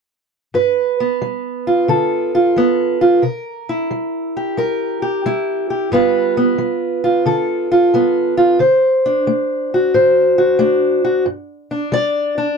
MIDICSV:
0, 0, Header, 1, 2, 480
1, 0, Start_track
1, 0, Tempo, 668896
1, 400, Time_signature, 4, 2, 24, 8
1, 9023, End_track
2, 0, Start_track
2, 0, Title_t, "Steel-string acoustic guitar"
2, 0, Program_c, 0, 25
2, 388, Note_on_c, 0, 43, 55
2, 393, Note_on_c, 0, 71, 51
2, 720, Note_on_c, 0, 59, 43
2, 844, Note_off_c, 0, 43, 0
2, 873, Note_on_c, 0, 55, 49
2, 1199, Note_on_c, 0, 65, 43
2, 1327, Note_off_c, 0, 55, 0
2, 1351, Note_on_c, 0, 50, 53
2, 1354, Note_off_c, 0, 71, 0
2, 1357, Note_on_c, 0, 69, 48
2, 1676, Note_off_c, 0, 65, 0
2, 1685, Note_on_c, 0, 65, 46
2, 1807, Note_off_c, 0, 50, 0
2, 1839, Note_off_c, 0, 59, 0
2, 1839, Note_on_c, 0, 55, 50
2, 1848, Note_on_c, 0, 59, 48
2, 2153, Note_off_c, 0, 65, 0
2, 2161, Note_on_c, 0, 65, 44
2, 2292, Note_off_c, 0, 55, 0
2, 2303, Note_off_c, 0, 65, 0
2, 2304, Note_off_c, 0, 69, 0
2, 2312, Note_on_c, 0, 48, 53
2, 2317, Note_on_c, 0, 70, 44
2, 2327, Note_off_c, 0, 59, 0
2, 2650, Note_on_c, 0, 64, 46
2, 2769, Note_off_c, 0, 48, 0
2, 2803, Note_on_c, 0, 55, 52
2, 3133, Note_on_c, 0, 67, 45
2, 3255, Note_off_c, 0, 55, 0
2, 3280, Note_off_c, 0, 70, 0
2, 3282, Note_on_c, 0, 55, 47
2, 3288, Note_on_c, 0, 70, 50
2, 3595, Note_off_c, 0, 67, 0
2, 3604, Note_on_c, 0, 67, 48
2, 3734, Note_off_c, 0, 55, 0
2, 3765, Note_off_c, 0, 64, 0
2, 3773, Note_on_c, 0, 55, 54
2, 3775, Note_on_c, 0, 64, 51
2, 4084, Note_off_c, 0, 67, 0
2, 4092, Note_on_c, 0, 67, 44
2, 4220, Note_off_c, 0, 55, 0
2, 4230, Note_off_c, 0, 67, 0
2, 4230, Note_off_c, 0, 70, 0
2, 4233, Note_off_c, 0, 64, 0
2, 4245, Note_on_c, 0, 43, 51
2, 4247, Note_on_c, 0, 55, 42
2, 4254, Note_on_c, 0, 59, 49
2, 4261, Note_on_c, 0, 65, 42
2, 4265, Note_on_c, 0, 71, 57
2, 4564, Note_off_c, 0, 59, 0
2, 4572, Note_on_c, 0, 59, 45
2, 4696, Note_off_c, 0, 43, 0
2, 4715, Note_off_c, 0, 55, 0
2, 4724, Note_on_c, 0, 55, 54
2, 5043, Note_off_c, 0, 65, 0
2, 5051, Note_on_c, 0, 65, 43
2, 5175, Note_off_c, 0, 55, 0
2, 5207, Note_on_c, 0, 50, 51
2, 5210, Note_off_c, 0, 71, 0
2, 5213, Note_on_c, 0, 69, 52
2, 5528, Note_off_c, 0, 65, 0
2, 5537, Note_on_c, 0, 65, 49
2, 5656, Note_off_c, 0, 50, 0
2, 5689, Note_off_c, 0, 59, 0
2, 5696, Note_on_c, 0, 55, 58
2, 5702, Note_on_c, 0, 59, 53
2, 6001, Note_off_c, 0, 65, 0
2, 6009, Note_on_c, 0, 65, 49
2, 6142, Note_off_c, 0, 55, 0
2, 6148, Note_off_c, 0, 65, 0
2, 6151, Note_off_c, 0, 69, 0
2, 6166, Note_on_c, 0, 50, 55
2, 6172, Note_on_c, 0, 72, 51
2, 6174, Note_off_c, 0, 59, 0
2, 6499, Note_on_c, 0, 62, 46
2, 6615, Note_off_c, 0, 50, 0
2, 6653, Note_on_c, 0, 57, 54
2, 6990, Note_on_c, 0, 66, 41
2, 7098, Note_off_c, 0, 57, 0
2, 7126, Note_off_c, 0, 72, 0
2, 7135, Note_on_c, 0, 45, 50
2, 7136, Note_on_c, 0, 72, 48
2, 7441, Note_off_c, 0, 66, 0
2, 7450, Note_on_c, 0, 66, 49
2, 7578, Note_off_c, 0, 45, 0
2, 7593, Note_off_c, 0, 62, 0
2, 7599, Note_on_c, 0, 57, 59
2, 7602, Note_on_c, 0, 62, 47
2, 7917, Note_off_c, 0, 66, 0
2, 7926, Note_on_c, 0, 66, 45
2, 8049, Note_off_c, 0, 57, 0
2, 8063, Note_off_c, 0, 62, 0
2, 8064, Note_off_c, 0, 66, 0
2, 8069, Note_off_c, 0, 72, 0
2, 8078, Note_on_c, 0, 43, 58
2, 8403, Note_on_c, 0, 62, 41
2, 8528, Note_off_c, 0, 43, 0
2, 8553, Note_on_c, 0, 55, 59
2, 8564, Note_on_c, 0, 74, 85
2, 8879, Note_off_c, 0, 62, 0
2, 8882, Note_on_c, 0, 62, 41
2, 9004, Note_off_c, 0, 55, 0
2, 9023, Note_off_c, 0, 62, 0
2, 9023, Note_off_c, 0, 74, 0
2, 9023, End_track
0, 0, End_of_file